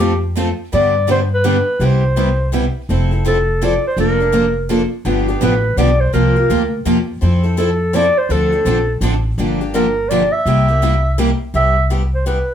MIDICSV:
0, 0, Header, 1, 4, 480
1, 0, Start_track
1, 0, Key_signature, -1, "major"
1, 0, Tempo, 360360
1, 971, Time_signature, 3, 2, 24, 8
1, 16706, End_track
2, 0, Start_track
2, 0, Title_t, "Clarinet"
2, 0, Program_c, 0, 71
2, 0, Note_on_c, 0, 67, 80
2, 389, Note_off_c, 0, 67, 0
2, 994, Note_on_c, 0, 74, 97
2, 1430, Note_off_c, 0, 74, 0
2, 1483, Note_on_c, 0, 72, 86
2, 1612, Note_off_c, 0, 72, 0
2, 1786, Note_on_c, 0, 71, 82
2, 1937, Note_off_c, 0, 71, 0
2, 1965, Note_on_c, 0, 71, 80
2, 2469, Note_on_c, 0, 72, 84
2, 2489, Note_off_c, 0, 71, 0
2, 3402, Note_off_c, 0, 72, 0
2, 4364, Note_on_c, 0, 69, 88
2, 4858, Note_on_c, 0, 74, 90
2, 4878, Note_off_c, 0, 69, 0
2, 5138, Note_off_c, 0, 74, 0
2, 5157, Note_on_c, 0, 72, 82
2, 5305, Note_off_c, 0, 72, 0
2, 5328, Note_on_c, 0, 70, 85
2, 6219, Note_off_c, 0, 70, 0
2, 7229, Note_on_c, 0, 71, 85
2, 7696, Note_on_c, 0, 74, 89
2, 7716, Note_off_c, 0, 71, 0
2, 7997, Note_on_c, 0, 72, 78
2, 8017, Note_off_c, 0, 74, 0
2, 8164, Note_off_c, 0, 72, 0
2, 8172, Note_on_c, 0, 70, 79
2, 9080, Note_off_c, 0, 70, 0
2, 10097, Note_on_c, 0, 69, 84
2, 10593, Note_on_c, 0, 74, 103
2, 10613, Note_off_c, 0, 69, 0
2, 10894, Note_on_c, 0, 72, 87
2, 10914, Note_off_c, 0, 74, 0
2, 11075, Note_on_c, 0, 69, 80
2, 11095, Note_off_c, 0, 72, 0
2, 12024, Note_off_c, 0, 69, 0
2, 12986, Note_on_c, 0, 70, 89
2, 13439, Note_on_c, 0, 74, 95
2, 13459, Note_off_c, 0, 70, 0
2, 13749, Note_on_c, 0, 76, 88
2, 13769, Note_off_c, 0, 74, 0
2, 14888, Note_off_c, 0, 76, 0
2, 15399, Note_on_c, 0, 76, 93
2, 15832, Note_off_c, 0, 76, 0
2, 16181, Note_on_c, 0, 72, 76
2, 16333, Note_off_c, 0, 72, 0
2, 16347, Note_on_c, 0, 71, 80
2, 16706, Note_off_c, 0, 71, 0
2, 16706, End_track
3, 0, Start_track
3, 0, Title_t, "Steel-string acoustic guitar"
3, 0, Program_c, 1, 25
3, 0, Note_on_c, 1, 53, 75
3, 0, Note_on_c, 1, 57, 79
3, 0, Note_on_c, 1, 60, 90
3, 4, Note_on_c, 1, 65, 74
3, 4, Note_on_c, 1, 69, 88
3, 148, Note_off_c, 1, 53, 0
3, 152, Note_off_c, 1, 57, 0
3, 153, Note_off_c, 1, 60, 0
3, 157, Note_off_c, 1, 65, 0
3, 157, Note_off_c, 1, 69, 0
3, 486, Note_on_c, 1, 53, 75
3, 492, Note_on_c, 1, 57, 86
3, 495, Note_on_c, 1, 60, 88
3, 500, Note_on_c, 1, 65, 78
3, 500, Note_on_c, 1, 69, 86
3, 638, Note_off_c, 1, 53, 0
3, 641, Note_off_c, 1, 57, 0
3, 643, Note_off_c, 1, 60, 0
3, 645, Note_off_c, 1, 65, 0
3, 645, Note_off_c, 1, 69, 0
3, 967, Note_on_c, 1, 55, 63
3, 968, Note_on_c, 1, 50, 62
3, 971, Note_on_c, 1, 62, 62
3, 974, Note_on_c, 1, 59, 63
3, 979, Note_on_c, 1, 67, 68
3, 1252, Note_off_c, 1, 55, 0
3, 1253, Note_off_c, 1, 50, 0
3, 1254, Note_off_c, 1, 62, 0
3, 1256, Note_off_c, 1, 59, 0
3, 1258, Note_off_c, 1, 67, 0
3, 1434, Note_on_c, 1, 50, 83
3, 1436, Note_on_c, 1, 55, 78
3, 1447, Note_on_c, 1, 59, 83
3, 1450, Note_on_c, 1, 62, 81
3, 1450, Note_on_c, 1, 67, 85
3, 1593, Note_off_c, 1, 50, 0
3, 1594, Note_off_c, 1, 55, 0
3, 1599, Note_off_c, 1, 59, 0
3, 1601, Note_off_c, 1, 62, 0
3, 1601, Note_off_c, 1, 67, 0
3, 1917, Note_on_c, 1, 50, 82
3, 1919, Note_on_c, 1, 59, 87
3, 1923, Note_on_c, 1, 55, 75
3, 1923, Note_on_c, 1, 62, 84
3, 1934, Note_on_c, 1, 67, 83
3, 2075, Note_off_c, 1, 50, 0
3, 2076, Note_off_c, 1, 59, 0
3, 2078, Note_off_c, 1, 55, 0
3, 2078, Note_off_c, 1, 62, 0
3, 2083, Note_off_c, 1, 67, 0
3, 2398, Note_on_c, 1, 48, 67
3, 2409, Note_on_c, 1, 55, 64
3, 2409, Note_on_c, 1, 59, 59
3, 2411, Note_on_c, 1, 64, 68
3, 2415, Note_on_c, 1, 67, 73
3, 2689, Note_off_c, 1, 48, 0
3, 2694, Note_off_c, 1, 55, 0
3, 2694, Note_off_c, 1, 59, 0
3, 2695, Note_off_c, 1, 64, 0
3, 2697, Note_off_c, 1, 67, 0
3, 2880, Note_on_c, 1, 48, 71
3, 2889, Note_on_c, 1, 55, 84
3, 2891, Note_on_c, 1, 59, 84
3, 2891, Note_on_c, 1, 67, 74
3, 2895, Note_on_c, 1, 64, 79
3, 3037, Note_off_c, 1, 48, 0
3, 3041, Note_off_c, 1, 55, 0
3, 3042, Note_off_c, 1, 59, 0
3, 3042, Note_off_c, 1, 67, 0
3, 3044, Note_off_c, 1, 64, 0
3, 3357, Note_on_c, 1, 48, 71
3, 3363, Note_on_c, 1, 55, 75
3, 3366, Note_on_c, 1, 59, 86
3, 3373, Note_on_c, 1, 64, 85
3, 3374, Note_on_c, 1, 67, 82
3, 3516, Note_off_c, 1, 48, 0
3, 3518, Note_off_c, 1, 55, 0
3, 3520, Note_off_c, 1, 59, 0
3, 3523, Note_off_c, 1, 64, 0
3, 3524, Note_off_c, 1, 67, 0
3, 3852, Note_on_c, 1, 53, 59
3, 3862, Note_on_c, 1, 60, 59
3, 3868, Note_on_c, 1, 64, 70
3, 3868, Note_on_c, 1, 69, 78
3, 4129, Note_off_c, 1, 69, 0
3, 4137, Note_off_c, 1, 53, 0
3, 4142, Note_off_c, 1, 60, 0
3, 4145, Note_off_c, 1, 64, 0
3, 4145, Note_on_c, 1, 69, 48
3, 4164, Note_on_c, 1, 64, 46
3, 4173, Note_on_c, 1, 60, 40
3, 4320, Note_off_c, 1, 64, 0
3, 4321, Note_off_c, 1, 60, 0
3, 4322, Note_off_c, 1, 69, 0
3, 4324, Note_on_c, 1, 53, 73
3, 4336, Note_on_c, 1, 64, 83
3, 4337, Note_on_c, 1, 60, 83
3, 4345, Note_on_c, 1, 69, 78
3, 4480, Note_off_c, 1, 53, 0
3, 4485, Note_off_c, 1, 64, 0
3, 4486, Note_off_c, 1, 60, 0
3, 4490, Note_off_c, 1, 69, 0
3, 4815, Note_on_c, 1, 53, 78
3, 4818, Note_on_c, 1, 60, 73
3, 4824, Note_on_c, 1, 64, 83
3, 4827, Note_on_c, 1, 69, 85
3, 4965, Note_off_c, 1, 53, 0
3, 4967, Note_off_c, 1, 60, 0
3, 4969, Note_off_c, 1, 64, 0
3, 4971, Note_off_c, 1, 69, 0
3, 5296, Note_on_c, 1, 53, 63
3, 5300, Note_on_c, 1, 58, 61
3, 5302, Note_on_c, 1, 62, 67
3, 5309, Note_on_c, 1, 69, 64
3, 5579, Note_off_c, 1, 53, 0
3, 5580, Note_off_c, 1, 58, 0
3, 5582, Note_off_c, 1, 62, 0
3, 5582, Note_off_c, 1, 69, 0
3, 5598, Note_on_c, 1, 69, 49
3, 5612, Note_on_c, 1, 62, 44
3, 5622, Note_on_c, 1, 58, 42
3, 5752, Note_off_c, 1, 58, 0
3, 5753, Note_off_c, 1, 62, 0
3, 5759, Note_on_c, 1, 53, 77
3, 5763, Note_off_c, 1, 69, 0
3, 5768, Note_on_c, 1, 58, 86
3, 5768, Note_on_c, 1, 62, 79
3, 5779, Note_on_c, 1, 69, 82
3, 5917, Note_off_c, 1, 53, 0
3, 5922, Note_off_c, 1, 58, 0
3, 5922, Note_off_c, 1, 62, 0
3, 5927, Note_off_c, 1, 69, 0
3, 6259, Note_on_c, 1, 53, 83
3, 6261, Note_on_c, 1, 58, 78
3, 6269, Note_on_c, 1, 62, 78
3, 6273, Note_on_c, 1, 69, 86
3, 6407, Note_off_c, 1, 53, 0
3, 6408, Note_off_c, 1, 58, 0
3, 6412, Note_off_c, 1, 62, 0
3, 6414, Note_off_c, 1, 69, 0
3, 6726, Note_on_c, 1, 50, 65
3, 6730, Note_on_c, 1, 53, 65
3, 6735, Note_on_c, 1, 59, 64
3, 6740, Note_on_c, 1, 62, 74
3, 6745, Note_on_c, 1, 67, 65
3, 7014, Note_off_c, 1, 50, 0
3, 7016, Note_off_c, 1, 53, 0
3, 7018, Note_off_c, 1, 59, 0
3, 7021, Note_off_c, 1, 62, 0
3, 7023, Note_off_c, 1, 67, 0
3, 7037, Note_on_c, 1, 67, 59
3, 7045, Note_on_c, 1, 62, 50
3, 7059, Note_on_c, 1, 59, 48
3, 7203, Note_off_c, 1, 62, 0
3, 7208, Note_off_c, 1, 59, 0
3, 7209, Note_off_c, 1, 67, 0
3, 7216, Note_on_c, 1, 50, 91
3, 7217, Note_on_c, 1, 53, 79
3, 7219, Note_on_c, 1, 62, 83
3, 7224, Note_on_c, 1, 59, 87
3, 7229, Note_on_c, 1, 67, 89
3, 7365, Note_off_c, 1, 50, 0
3, 7366, Note_off_c, 1, 53, 0
3, 7367, Note_off_c, 1, 62, 0
3, 7369, Note_off_c, 1, 59, 0
3, 7372, Note_off_c, 1, 67, 0
3, 7690, Note_on_c, 1, 50, 85
3, 7697, Note_on_c, 1, 53, 81
3, 7697, Note_on_c, 1, 59, 82
3, 7698, Note_on_c, 1, 62, 96
3, 7708, Note_on_c, 1, 67, 86
3, 7843, Note_off_c, 1, 50, 0
3, 7846, Note_off_c, 1, 53, 0
3, 7846, Note_off_c, 1, 59, 0
3, 7847, Note_off_c, 1, 62, 0
3, 7852, Note_off_c, 1, 67, 0
3, 8178, Note_on_c, 1, 48, 61
3, 8184, Note_on_c, 1, 58, 63
3, 8185, Note_on_c, 1, 53, 66
3, 8192, Note_on_c, 1, 65, 70
3, 8196, Note_on_c, 1, 67, 69
3, 8454, Note_off_c, 1, 67, 0
3, 8460, Note_off_c, 1, 48, 0
3, 8462, Note_off_c, 1, 58, 0
3, 8463, Note_off_c, 1, 53, 0
3, 8463, Note_off_c, 1, 65, 0
3, 8470, Note_on_c, 1, 67, 46
3, 8479, Note_on_c, 1, 65, 53
3, 8492, Note_on_c, 1, 58, 45
3, 8645, Note_off_c, 1, 67, 0
3, 8647, Note_off_c, 1, 58, 0
3, 8649, Note_off_c, 1, 65, 0
3, 8655, Note_on_c, 1, 48, 70
3, 8659, Note_on_c, 1, 53, 70
3, 8663, Note_on_c, 1, 58, 77
3, 8669, Note_on_c, 1, 67, 82
3, 8671, Note_on_c, 1, 65, 91
3, 8805, Note_off_c, 1, 48, 0
3, 8807, Note_off_c, 1, 53, 0
3, 8809, Note_off_c, 1, 58, 0
3, 8812, Note_off_c, 1, 67, 0
3, 8813, Note_off_c, 1, 65, 0
3, 9129, Note_on_c, 1, 48, 85
3, 9133, Note_on_c, 1, 53, 78
3, 9139, Note_on_c, 1, 58, 78
3, 9144, Note_on_c, 1, 65, 82
3, 9146, Note_on_c, 1, 67, 85
3, 9282, Note_off_c, 1, 48, 0
3, 9284, Note_off_c, 1, 53, 0
3, 9287, Note_off_c, 1, 58, 0
3, 9289, Note_off_c, 1, 65, 0
3, 9290, Note_off_c, 1, 67, 0
3, 9604, Note_on_c, 1, 53, 60
3, 9612, Note_on_c, 1, 60, 63
3, 9617, Note_on_c, 1, 64, 58
3, 9623, Note_on_c, 1, 69, 73
3, 9888, Note_off_c, 1, 69, 0
3, 9892, Note_off_c, 1, 53, 0
3, 9896, Note_off_c, 1, 60, 0
3, 9899, Note_off_c, 1, 64, 0
3, 9904, Note_on_c, 1, 69, 51
3, 9915, Note_on_c, 1, 64, 47
3, 9929, Note_on_c, 1, 60, 38
3, 10072, Note_off_c, 1, 60, 0
3, 10073, Note_off_c, 1, 64, 0
3, 10081, Note_off_c, 1, 69, 0
3, 10083, Note_on_c, 1, 53, 73
3, 10088, Note_on_c, 1, 60, 75
3, 10089, Note_on_c, 1, 64, 81
3, 10099, Note_on_c, 1, 69, 89
3, 10239, Note_off_c, 1, 53, 0
3, 10241, Note_off_c, 1, 60, 0
3, 10242, Note_off_c, 1, 64, 0
3, 10246, Note_off_c, 1, 69, 0
3, 10566, Note_on_c, 1, 53, 89
3, 10571, Note_on_c, 1, 60, 84
3, 10576, Note_on_c, 1, 64, 90
3, 10578, Note_on_c, 1, 69, 89
3, 10720, Note_off_c, 1, 53, 0
3, 10722, Note_off_c, 1, 60, 0
3, 10725, Note_off_c, 1, 64, 0
3, 10726, Note_off_c, 1, 69, 0
3, 11051, Note_on_c, 1, 50, 52
3, 11055, Note_on_c, 1, 53, 66
3, 11058, Note_on_c, 1, 60, 68
3, 11062, Note_on_c, 1, 62, 63
3, 11070, Note_on_c, 1, 69, 70
3, 11335, Note_off_c, 1, 50, 0
3, 11335, Note_off_c, 1, 69, 0
3, 11337, Note_off_c, 1, 53, 0
3, 11339, Note_off_c, 1, 60, 0
3, 11341, Note_off_c, 1, 62, 0
3, 11351, Note_on_c, 1, 69, 50
3, 11365, Note_on_c, 1, 62, 52
3, 11373, Note_on_c, 1, 60, 37
3, 11519, Note_off_c, 1, 60, 0
3, 11519, Note_off_c, 1, 62, 0
3, 11524, Note_off_c, 1, 69, 0
3, 11527, Note_on_c, 1, 50, 76
3, 11530, Note_on_c, 1, 53, 77
3, 11535, Note_on_c, 1, 60, 85
3, 11535, Note_on_c, 1, 62, 89
3, 11543, Note_on_c, 1, 69, 87
3, 11680, Note_off_c, 1, 50, 0
3, 11682, Note_off_c, 1, 53, 0
3, 11684, Note_off_c, 1, 60, 0
3, 11684, Note_off_c, 1, 62, 0
3, 11688, Note_off_c, 1, 69, 0
3, 12004, Note_on_c, 1, 50, 78
3, 12009, Note_on_c, 1, 53, 81
3, 12013, Note_on_c, 1, 60, 83
3, 12015, Note_on_c, 1, 62, 91
3, 12021, Note_on_c, 1, 69, 89
3, 12158, Note_off_c, 1, 50, 0
3, 12161, Note_off_c, 1, 53, 0
3, 12163, Note_off_c, 1, 60, 0
3, 12164, Note_off_c, 1, 62, 0
3, 12167, Note_off_c, 1, 69, 0
3, 12496, Note_on_c, 1, 50, 63
3, 12502, Note_on_c, 1, 53, 57
3, 12507, Note_on_c, 1, 58, 60
3, 12508, Note_on_c, 1, 62, 63
3, 12513, Note_on_c, 1, 67, 73
3, 12777, Note_off_c, 1, 50, 0
3, 12780, Note_off_c, 1, 53, 0
3, 12782, Note_off_c, 1, 58, 0
3, 12783, Note_off_c, 1, 62, 0
3, 12786, Note_off_c, 1, 67, 0
3, 12799, Note_on_c, 1, 67, 51
3, 12803, Note_on_c, 1, 62, 57
3, 12817, Note_on_c, 1, 58, 50
3, 12959, Note_off_c, 1, 58, 0
3, 12963, Note_off_c, 1, 62, 0
3, 12968, Note_off_c, 1, 67, 0
3, 12972, Note_on_c, 1, 50, 82
3, 12975, Note_on_c, 1, 58, 83
3, 12979, Note_on_c, 1, 53, 76
3, 12979, Note_on_c, 1, 62, 79
3, 12988, Note_on_c, 1, 67, 83
3, 13122, Note_off_c, 1, 50, 0
3, 13123, Note_off_c, 1, 58, 0
3, 13125, Note_off_c, 1, 53, 0
3, 13125, Note_off_c, 1, 62, 0
3, 13130, Note_off_c, 1, 67, 0
3, 13461, Note_on_c, 1, 50, 82
3, 13461, Note_on_c, 1, 53, 93
3, 13463, Note_on_c, 1, 58, 79
3, 13463, Note_on_c, 1, 62, 78
3, 13476, Note_on_c, 1, 67, 92
3, 13606, Note_off_c, 1, 50, 0
3, 13606, Note_off_c, 1, 53, 0
3, 13607, Note_off_c, 1, 58, 0
3, 13607, Note_off_c, 1, 62, 0
3, 13614, Note_off_c, 1, 67, 0
3, 13942, Note_on_c, 1, 48, 63
3, 13944, Note_on_c, 1, 58, 64
3, 13947, Note_on_c, 1, 55, 69
3, 13950, Note_on_c, 1, 67, 80
3, 13956, Note_on_c, 1, 64, 68
3, 14215, Note_off_c, 1, 67, 0
3, 14219, Note_off_c, 1, 48, 0
3, 14220, Note_off_c, 1, 58, 0
3, 14222, Note_off_c, 1, 55, 0
3, 14226, Note_off_c, 1, 64, 0
3, 14231, Note_on_c, 1, 67, 55
3, 14243, Note_on_c, 1, 64, 51
3, 14259, Note_on_c, 1, 58, 42
3, 14403, Note_off_c, 1, 67, 0
3, 14406, Note_off_c, 1, 58, 0
3, 14409, Note_off_c, 1, 64, 0
3, 14411, Note_on_c, 1, 48, 71
3, 14416, Note_on_c, 1, 55, 77
3, 14422, Note_on_c, 1, 58, 83
3, 14427, Note_on_c, 1, 64, 84
3, 14427, Note_on_c, 1, 67, 80
3, 14560, Note_off_c, 1, 48, 0
3, 14563, Note_off_c, 1, 55, 0
3, 14566, Note_off_c, 1, 58, 0
3, 14568, Note_off_c, 1, 64, 0
3, 14568, Note_off_c, 1, 67, 0
3, 14892, Note_on_c, 1, 55, 73
3, 14893, Note_on_c, 1, 48, 77
3, 14895, Note_on_c, 1, 58, 92
3, 14901, Note_on_c, 1, 64, 92
3, 14904, Note_on_c, 1, 67, 86
3, 15041, Note_off_c, 1, 48, 0
3, 15041, Note_off_c, 1, 55, 0
3, 15042, Note_off_c, 1, 58, 0
3, 15045, Note_off_c, 1, 64, 0
3, 15047, Note_off_c, 1, 67, 0
3, 15369, Note_on_c, 1, 48, 61
3, 15378, Note_on_c, 1, 55, 58
3, 15383, Note_on_c, 1, 64, 62
3, 15385, Note_on_c, 1, 67, 66
3, 15386, Note_on_c, 1, 59, 60
3, 15652, Note_off_c, 1, 48, 0
3, 15657, Note_off_c, 1, 55, 0
3, 15659, Note_off_c, 1, 64, 0
3, 15660, Note_off_c, 1, 67, 0
3, 15661, Note_off_c, 1, 59, 0
3, 15854, Note_on_c, 1, 48, 76
3, 15857, Note_on_c, 1, 64, 67
3, 15859, Note_on_c, 1, 55, 73
3, 15863, Note_on_c, 1, 59, 67
3, 15867, Note_on_c, 1, 67, 90
3, 16001, Note_off_c, 1, 48, 0
3, 16003, Note_off_c, 1, 64, 0
3, 16004, Note_off_c, 1, 55, 0
3, 16006, Note_off_c, 1, 59, 0
3, 16008, Note_off_c, 1, 67, 0
3, 16330, Note_on_c, 1, 48, 77
3, 16334, Note_on_c, 1, 55, 70
3, 16336, Note_on_c, 1, 59, 81
3, 16340, Note_on_c, 1, 64, 78
3, 16344, Note_on_c, 1, 67, 93
3, 16479, Note_off_c, 1, 48, 0
3, 16481, Note_off_c, 1, 55, 0
3, 16482, Note_off_c, 1, 59, 0
3, 16484, Note_off_c, 1, 64, 0
3, 16486, Note_off_c, 1, 67, 0
3, 16706, End_track
4, 0, Start_track
4, 0, Title_t, "Upright bass"
4, 0, Program_c, 2, 32
4, 0, Note_on_c, 2, 41, 79
4, 673, Note_off_c, 2, 41, 0
4, 971, Note_on_c, 2, 43, 82
4, 2125, Note_off_c, 2, 43, 0
4, 2391, Note_on_c, 2, 36, 75
4, 3553, Note_off_c, 2, 36, 0
4, 3847, Note_on_c, 2, 29, 72
4, 5003, Note_off_c, 2, 29, 0
4, 5282, Note_on_c, 2, 29, 76
4, 6440, Note_off_c, 2, 29, 0
4, 6724, Note_on_c, 2, 31, 75
4, 7112, Note_off_c, 2, 31, 0
4, 7206, Note_on_c, 2, 33, 89
4, 7618, Note_off_c, 2, 33, 0
4, 7680, Note_on_c, 2, 35, 69
4, 8095, Note_off_c, 2, 35, 0
4, 8172, Note_on_c, 2, 36, 76
4, 8557, Note_off_c, 2, 36, 0
4, 8653, Note_on_c, 2, 38, 80
4, 9062, Note_off_c, 2, 38, 0
4, 9127, Note_on_c, 2, 40, 69
4, 9538, Note_off_c, 2, 40, 0
4, 9617, Note_on_c, 2, 41, 76
4, 10767, Note_off_c, 2, 41, 0
4, 11043, Note_on_c, 2, 38, 77
4, 11431, Note_off_c, 2, 38, 0
4, 11522, Note_on_c, 2, 34, 85
4, 11934, Note_off_c, 2, 34, 0
4, 11998, Note_on_c, 2, 33, 82
4, 12412, Note_off_c, 2, 33, 0
4, 12490, Note_on_c, 2, 31, 83
4, 13641, Note_off_c, 2, 31, 0
4, 13926, Note_on_c, 2, 36, 87
4, 15079, Note_off_c, 2, 36, 0
4, 15368, Note_on_c, 2, 36, 72
4, 16520, Note_off_c, 2, 36, 0
4, 16706, End_track
0, 0, End_of_file